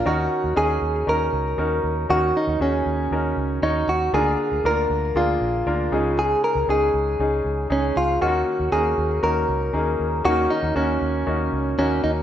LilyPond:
<<
  \new Staff \with { instrumentName = "Clean electric guitar" } { \time 4/4 \key des \mixolydian \tempo 4 = 118 ges'4 aes'4 bes'2 | ges'8 ees'8 des'2 ees'8 ges'8 | aes'4 bes'4 f'2 | aes'8 bes'8 aes'2 des'8 f'8 |
ges'4 aes'4 bes'2 | ges'8 ees'8 des'2 des'8 ees'8 | }
  \new Staff \with { instrumentName = "Grand piano" } { \time 4/4 \key des \mixolydian <des' ees' ges' bes'>8. r16 <des' ees' ges' aes'>8. r16 <des' ees' ges' bes'>8. r16 <des' ees' ges' bes'>8. r16 | <des' ees' ges' bes'>8. r16 <des' ees' ges' aes'>8. r16 <des' ees' ges' bes'>8. r16 <des' ees' ges' des''>8. r16 | <bes d' f' bes'>8. r16 <bes d' f' bes'>8. r16 <bes d' f' aes'>8. r16 <bes d' f' bes'>8 <aes des' ees' aes'>8~ | <aes des' ees' aes'>8 r8 <aes des' ees' aes'>8. r16 <aes des' ees' aes'>8. r16 <aes des' ees' aes'>8. r16 |
<bes des' ees' f' ges'>8. r16 <bes des' ees' ges'>8. r16 <bes des' ees' ges'>8. r16 <bes des' ees' aes'>8. r16 | <bes des' ees' ges'>8. r16 <bes des' ees' ges'>8. r16 <bes des' ees' ges'>8. r16 <bes des' ees' ges'>8. r16 | }
  \new Staff \with { instrumentName = "Grand piano" } { \clef bass \time 4/4 \key des \mixolydian ees4. r2 r8 | ees4. r2 r8 | d4. r2 des8~ | des4 r2. |
ees4. r2 r8 | ees4. r2 r8 | }
  \new Staff \with { instrumentName = "Fingered electric bass" } { \clef bass \time 4/4 \key des \mixolydian ees,8 r16 ees,16 ees,8 ees,8 ees,8 des,8 ees,8 ees,8 | ees,8 r16 ees,16 ees,8 ees,8 ees,8 des,8 ees,8 ees,8 | d,8 r16 d,16 d,8 d,8 d,8 bes,,8 d,8 des,8~ | des,8 r16 des,16 des,8 des,8 des,8 des,8 des,8 des,8 |
ees,8 r16 ees,16 ees,8 ees,8 ees,8 des,8 ees,8 ees,8 | ees,8 r16 ees,16 ees,8 ees,8 ees,8 des,8 ees,8 ees,8 | }
>>